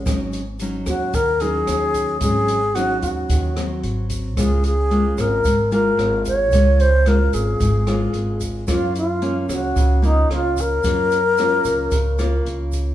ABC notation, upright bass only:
X:1
M:4/4
L:1/8
Q:1/4=111
K:Db
V:1 name="Upright bass" clef=bass
A,,,3 E,, E,,2 E,,2 | A,,,3 E,, E,,2 A,,,2 | D,,3 A,,, A,,,2 A,,,2 | D,,3 A,,, A,,,2 A,,,2 |
G,,3 D,, D,,2 D,,2 | G,,3 D,, D,,2 D,,2 |]